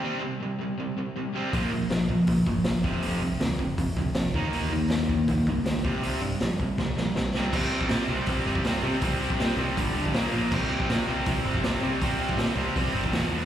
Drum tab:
CC |----------------|----------------|----------------|----------------|
HH |----------------|o---o---o---o---|o---o---o---o---|o---o---o---o---|
SD |----------------|----o-------o---|----o-------o---|----o-------o---|
BD |----------------|o-----o-o-o---o-|------o-o-o---o-|------o-o-o---o-|

CC |----------------|x---------------|----------------|x---------------|
HH |o---o-----------|----o---o---o---|o---o---o---o---|----o---o---o---|
SD |----o---o-o-o-o-|----o-------o---|----o-------o---|----o-------o---|
BD |------o-o-------|o--o----o--o----|o--o----o--o----|o--o----o--o----|

CC |----------------|
HH |o---o---o---o---|
SD |----o-------o---|
BD |o--o----o--o----|